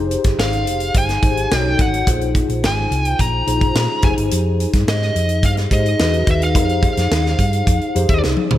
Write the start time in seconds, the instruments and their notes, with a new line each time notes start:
Already playing: fingered electric bass F1, tine electric piano D#4 G4 G#4 C5
0.11 closed hi-hat
0.24 fingered electric bass G1, kick, snare, closed hi-hat
0.38 fingered electric bass G#1, lead electric guitar F5, snare
0.53 closed hi-hat
0.67 fingered electric bass F1, closed hi-hat
0.80 closed hi-hat
0.94 fingered electric bass G1, lead electric guitar G#5, kick, closed hi-hat
1.09 snare, closed hi-hat
1.22 fingered electric bass G#1, tine electric piano D#4 G4 G#4 C5, kick, closed hi-hat
1.37 closed hi-hat
1.51 fingered electric bass B1, tine electric piano D#4 F#4 A4 C#5, snare
1.56 lead electric guitar G5
1.79 fingered electric bass G#1, lead electric guitar F#5, kick, closed hi-hat
1.94 closed hi-hat
2.07 fingered electric bass A#1, tine electric piano D4 F4 G#4 C5, kick, closed hi-hat
2.13 tine electric piano D#4
2.21 closed hi-hat
2.35 kick, closed hi-hat
2.49 fingered electric bass A#1, closed hi-hat
2.64 fingered electric bass G#1, lead electric guitar G#5, snare
2.91 fingered electric bass C2, closed hi-hat
3.05 lead electric guitar G5, closed hi-hat
3.19 fingered electric bass A#1, lead electric guitar A#5, kick, closed hi-hat
3.47 fingered electric bass A#1, tine electric piano D#4 F4 G#4 C5, closed hi-hat
3.61 kick, closed hi-hat
3.75 fingered electric bass A#2, snare
4.02 fingered electric bass F1, tine electric piano D#4 G4 G#4 B4, lead electric guitar G#5, kick, closed hi-hat
4.10 tine electric piano C5
4.17 fingered electric bass G1, closed hi-hat
4.31 fingered electric bass F2, closed hi-hat
4.60 closed hi-hat
4.73 fingered electric bass G2, kick, snare, closed hi-hat
4.87 fingered electric bass G#2, lead electric guitar D#5, snare
5.02 snare
5.15 fingered electric bass F2, closed hi-hat
5.29 closed hi-hat
5.43 fingered electric bass G2, lead electric guitar F5, kick, closed hi-hat
5.57 snare, closed hi-hat
5.71 fingered electric bass G#2, tine electric piano D#4 G4 G#4 C5, lead electric guitar D#5, kick, closed hi-hat
5.86 closed hi-hat
5.99 fingered electric bass E2, tine electric piano D#4 F#4 G#4 B4, snare
6.13 closed hi-hat
6.27 fingered electric bass D#2, kick, closed hi-hat
6.31 lead electric guitar E5
6.42 lead electric guitar F5, closed hi-hat
6.55 fingered electric bass F2, tine electric piano D#4 G4 G#4 A#4, kick, closed hi-hat
6.62 tine electric piano C5
6.69 closed hi-hat
6.83 kick, closed hi-hat
6.97 fingered electric bass F2, snare, closed hi-hat
7.11 fingered electric bass D#2, snare
7.26 snare
7.39 fingered electric bass G2, kick, closed hi-hat
7.53 closed hi-hat
7.67 fingered electric bass F2, kick, closed hi-hat
7.81 closed hi-hat
7.95 fingered electric bass F2, tine electric piano D#4 G4 G#4 C5, closed hi-hat
8.09 fingered electric bass D#2, kick, closed hi-hat
8.24 fingered electric bass C2, snare
8.37 high tom
8.51 fingered electric bass D2, mid tom